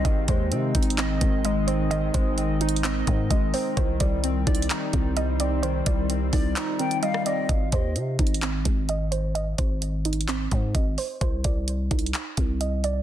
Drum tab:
HH |x-----x-----x-----x-x-x-x-----x-----x-----x-----|x-----x-----x-----x-x-x-x-----x-----x-----o-----|x-----x-----x-----x-x-x-x-----x-----x-----x-----|x-----x-----x-----o-----x-----x--x--x-----x-----|
CP |------------------------x-----------------------|------------------------x-----------------------|------------------------x-----------------------|------------------------x-----------------------|
SD |------------------------------------------------|------------------------------------------------|------------------------------------------------|---------------------------------------r--------|
BD |o-----o-----------o-----------o-----------------|------o-----------------------o-----o-----------|o-----o-----------o-----------o-----------------|------o-----------o-----------------------------|

HH |x-----x-----x-----x-x-x-x-----x-----x-----x-----|x-----x-----x-----x-x-x-x-----x-----x-----o-----|x-----x-----x-----x-x-x-x-----x-----x-----x-----|
CP |------------------------x-----------------------|------------------------x-----------------------|------------------------x-----------------------|
SD |------------------------------------------------|------------------------------------------------|------------------------------------------------|
BD |o-----o-----------o-----------o-----------------|------o-----------------------o-----o-----------|o-----o-----------o-----------o-----------------|